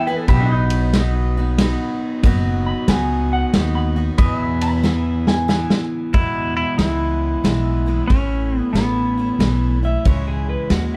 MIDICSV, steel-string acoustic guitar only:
0, 0, Header, 1, 2, 480
1, 0, Start_track
1, 0, Key_signature, 4, "major"
1, 0, Tempo, 651466
1, 209, Time_signature, 3, 2, 24, 8
1, 8080, End_track
2, 0, Start_track
2, 0, Title_t, "Steel-string acoustic guitar"
2, 0, Program_c, 0, 25
2, 53, Note_on_c, 0, 64, 50
2, 53, Note_on_c, 0, 68, 53
2, 61, Note_on_c, 0, 59, 46
2, 64, Note_on_c, 0, 52, 37
2, 209, Note_off_c, 0, 59, 0
2, 211, Note_off_c, 0, 52, 0
2, 213, Note_off_c, 0, 68, 0
2, 214, Note_off_c, 0, 64, 0
2, 214, Note_on_c, 0, 47, 74
2, 214, Note_on_c, 0, 54, 65
2, 218, Note_on_c, 0, 59, 83
2, 220, Note_on_c, 0, 63, 68
2, 221, Note_on_c, 0, 66, 73
2, 684, Note_off_c, 0, 54, 0
2, 690, Note_off_c, 0, 47, 0
2, 692, Note_off_c, 0, 63, 0
2, 693, Note_on_c, 0, 54, 61
2, 694, Note_off_c, 0, 66, 0
2, 695, Note_off_c, 0, 59, 0
2, 698, Note_on_c, 0, 59, 65
2, 701, Note_on_c, 0, 63, 74
2, 709, Note_on_c, 0, 66, 73
2, 1002, Note_off_c, 0, 66, 0
2, 1004, Note_off_c, 0, 54, 0
2, 1006, Note_off_c, 0, 59, 0
2, 1008, Note_off_c, 0, 63, 0
2, 1011, Note_on_c, 0, 66, 52
2, 1019, Note_on_c, 0, 63, 46
2, 1025, Note_on_c, 0, 59, 41
2, 1167, Note_off_c, 0, 59, 0
2, 1172, Note_off_c, 0, 66, 0
2, 1173, Note_off_c, 0, 63, 0
2, 1174, Note_on_c, 0, 54, 71
2, 1176, Note_on_c, 0, 59, 79
2, 1182, Note_on_c, 0, 63, 77
2, 1186, Note_on_c, 0, 66, 79
2, 1650, Note_off_c, 0, 54, 0
2, 1652, Note_off_c, 0, 63, 0
2, 1653, Note_on_c, 0, 47, 74
2, 1656, Note_off_c, 0, 59, 0
2, 1656, Note_off_c, 0, 66, 0
2, 1659, Note_on_c, 0, 59, 90
2, 1661, Note_on_c, 0, 54, 88
2, 1661, Note_on_c, 0, 63, 92
2, 1666, Note_on_c, 0, 66, 97
2, 2113, Note_off_c, 0, 54, 0
2, 2121, Note_on_c, 0, 54, 67
2, 2125, Note_off_c, 0, 63, 0
2, 2126, Note_off_c, 0, 59, 0
2, 2129, Note_off_c, 0, 47, 0
2, 2129, Note_on_c, 0, 59, 64
2, 2130, Note_off_c, 0, 66, 0
2, 2134, Note_on_c, 0, 63, 76
2, 2139, Note_on_c, 0, 66, 74
2, 2596, Note_off_c, 0, 54, 0
2, 2603, Note_off_c, 0, 63, 0
2, 2604, Note_off_c, 0, 59, 0
2, 2605, Note_on_c, 0, 54, 61
2, 2607, Note_on_c, 0, 59, 66
2, 2608, Note_off_c, 0, 66, 0
2, 2612, Note_on_c, 0, 63, 72
2, 2617, Note_on_c, 0, 66, 71
2, 2909, Note_off_c, 0, 66, 0
2, 2915, Note_off_c, 0, 63, 0
2, 2918, Note_off_c, 0, 54, 0
2, 2918, Note_on_c, 0, 66, 50
2, 2920, Note_off_c, 0, 59, 0
2, 2924, Note_on_c, 0, 63, 48
2, 2931, Note_on_c, 0, 59, 36
2, 3079, Note_off_c, 0, 59, 0
2, 3083, Note_on_c, 0, 40, 69
2, 3084, Note_off_c, 0, 66, 0
2, 3084, Note_on_c, 0, 47, 70
2, 3085, Note_off_c, 0, 63, 0
2, 3088, Note_on_c, 0, 59, 85
2, 3088, Note_on_c, 0, 64, 79
2, 3089, Note_on_c, 0, 52, 76
2, 3092, Note_on_c, 0, 68, 76
2, 3552, Note_off_c, 0, 52, 0
2, 3554, Note_off_c, 0, 59, 0
2, 3561, Note_off_c, 0, 64, 0
2, 3561, Note_on_c, 0, 52, 73
2, 3563, Note_off_c, 0, 40, 0
2, 3563, Note_on_c, 0, 59, 68
2, 3564, Note_off_c, 0, 47, 0
2, 3564, Note_off_c, 0, 68, 0
2, 3570, Note_on_c, 0, 64, 62
2, 3573, Note_on_c, 0, 68, 70
2, 4030, Note_off_c, 0, 52, 0
2, 4032, Note_off_c, 0, 59, 0
2, 4036, Note_off_c, 0, 64, 0
2, 4039, Note_on_c, 0, 52, 70
2, 4041, Note_on_c, 0, 59, 59
2, 4043, Note_off_c, 0, 68, 0
2, 4045, Note_on_c, 0, 64, 70
2, 4052, Note_on_c, 0, 68, 67
2, 4515, Note_off_c, 0, 52, 0
2, 4517, Note_off_c, 0, 59, 0
2, 4519, Note_on_c, 0, 40, 65
2, 4519, Note_on_c, 0, 47, 67
2, 4522, Note_off_c, 0, 64, 0
2, 4522, Note_on_c, 0, 56, 61
2, 4524, Note_on_c, 0, 52, 61
2, 4526, Note_on_c, 0, 59, 72
2, 4527, Note_off_c, 0, 68, 0
2, 4530, Note_on_c, 0, 64, 67
2, 4992, Note_off_c, 0, 56, 0
2, 4994, Note_off_c, 0, 52, 0
2, 4997, Note_on_c, 0, 52, 54
2, 4999, Note_off_c, 0, 59, 0
2, 5001, Note_off_c, 0, 40, 0
2, 5001, Note_off_c, 0, 47, 0
2, 5001, Note_on_c, 0, 56, 57
2, 5008, Note_on_c, 0, 59, 59
2, 5013, Note_off_c, 0, 64, 0
2, 5015, Note_on_c, 0, 64, 69
2, 5476, Note_off_c, 0, 56, 0
2, 5478, Note_off_c, 0, 52, 0
2, 5479, Note_off_c, 0, 59, 0
2, 5481, Note_on_c, 0, 52, 53
2, 5485, Note_on_c, 0, 56, 62
2, 5488, Note_on_c, 0, 59, 62
2, 5489, Note_off_c, 0, 64, 0
2, 5492, Note_on_c, 0, 64, 58
2, 5784, Note_off_c, 0, 64, 0
2, 5792, Note_on_c, 0, 64, 49
2, 5793, Note_off_c, 0, 59, 0
2, 5797, Note_off_c, 0, 52, 0
2, 5799, Note_off_c, 0, 56, 0
2, 5801, Note_on_c, 0, 59, 48
2, 5807, Note_on_c, 0, 56, 46
2, 5809, Note_on_c, 0, 52, 40
2, 5956, Note_off_c, 0, 52, 0
2, 5961, Note_off_c, 0, 64, 0
2, 5965, Note_on_c, 0, 45, 66
2, 5965, Note_on_c, 0, 52, 62
2, 5966, Note_off_c, 0, 59, 0
2, 5967, Note_off_c, 0, 56, 0
2, 5970, Note_on_c, 0, 57, 63
2, 5973, Note_on_c, 0, 61, 64
2, 5974, Note_on_c, 0, 64, 69
2, 6440, Note_off_c, 0, 52, 0
2, 6443, Note_off_c, 0, 57, 0
2, 6443, Note_on_c, 0, 52, 53
2, 6445, Note_off_c, 0, 45, 0
2, 6451, Note_off_c, 0, 61, 0
2, 6452, Note_on_c, 0, 57, 55
2, 6454, Note_off_c, 0, 64, 0
2, 6454, Note_on_c, 0, 61, 56
2, 6457, Note_on_c, 0, 64, 68
2, 6751, Note_off_c, 0, 64, 0
2, 6758, Note_off_c, 0, 52, 0
2, 6760, Note_on_c, 0, 64, 42
2, 6762, Note_off_c, 0, 61, 0
2, 6763, Note_off_c, 0, 57, 0
2, 6771, Note_on_c, 0, 61, 43
2, 6775, Note_on_c, 0, 57, 39
2, 6919, Note_off_c, 0, 57, 0
2, 6920, Note_off_c, 0, 61, 0
2, 6926, Note_off_c, 0, 64, 0
2, 6926, Note_on_c, 0, 52, 52
2, 6928, Note_on_c, 0, 57, 58
2, 6929, Note_on_c, 0, 61, 62
2, 6935, Note_on_c, 0, 64, 65
2, 7231, Note_off_c, 0, 64, 0
2, 7240, Note_off_c, 0, 52, 0
2, 7240, Note_off_c, 0, 61, 0
2, 7240, Note_on_c, 0, 64, 53
2, 7241, Note_off_c, 0, 57, 0
2, 7249, Note_on_c, 0, 61, 46
2, 7258, Note_on_c, 0, 57, 42
2, 7406, Note_off_c, 0, 64, 0
2, 7411, Note_off_c, 0, 61, 0
2, 7412, Note_on_c, 0, 49, 68
2, 7414, Note_off_c, 0, 57, 0
2, 7414, Note_on_c, 0, 52, 80
2, 7417, Note_on_c, 0, 56, 72
2, 7419, Note_on_c, 0, 61, 72
2, 7422, Note_on_c, 0, 64, 73
2, 7890, Note_off_c, 0, 49, 0
2, 7891, Note_off_c, 0, 52, 0
2, 7892, Note_off_c, 0, 56, 0
2, 7893, Note_off_c, 0, 61, 0
2, 7895, Note_off_c, 0, 64, 0
2, 7900, Note_on_c, 0, 56, 65
2, 7901, Note_on_c, 0, 61, 76
2, 7907, Note_on_c, 0, 64, 73
2, 8080, Note_off_c, 0, 56, 0
2, 8080, Note_off_c, 0, 61, 0
2, 8080, Note_off_c, 0, 64, 0
2, 8080, End_track
0, 0, End_of_file